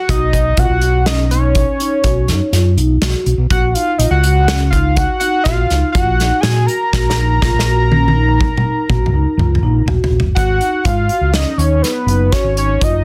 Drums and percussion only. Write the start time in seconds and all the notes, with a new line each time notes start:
0.09 kick, closed hi-hat
0.33 kick, closed hi-hat
0.57 kick, closed hi-hat
0.81 closed hi-hat
1.06 snare, closed hi-hat
1.31 closed hi-hat
1.55 kick, closed hi-hat
1.80 closed hi-hat
2.04 kick, closed hi-hat
2.28 snare, closed hi-hat
2.53 snare, closed hi-hat
2.78 closed hi-hat
3.02 snare, closed hi-hat
3.26 closed hi-hat
3.50 kick, closed hi-hat
3.75 closed hi-hat
4.00 closed hi-hat
4.23 closed hi-hat
4.48 snare, closed hi-hat
4.73 kick, closed hi-hat
4.96 kick, closed hi-hat
5.21 closed hi-hat
5.45 kick, snare, closed hi-hat
5.70 snare, closed hi-hat
5.95 kick, closed hi-hat
6.20 snare, closed hi-hat
6.43 snare, closed hi-hat
6.68 closed hi-hat
6.93 kick, snare
7.10 snare
7.42 kick, snare
7.59 snare
7.92 high tom
8.08 high tom
8.41 kick, mid tom
8.57 mid tom
8.90 kick, mid tom
9.06 mid tom
9.39 mid tom
9.55 mid tom
9.88 floor tom
10.04 floor tom
10.20 floor tom
10.36 kick, closed hi-hat
10.61 closed hi-hat
10.85 kick, closed hi-hat
11.09 closed hi-hat
11.34 snare, closed hi-hat
11.59 closed hi-hat
11.84 snare, closed hi-hat
12.08 closed hi-hat
12.32 kick, snare, closed hi-hat
12.57 closed hi-hat
12.81 kick, closed hi-hat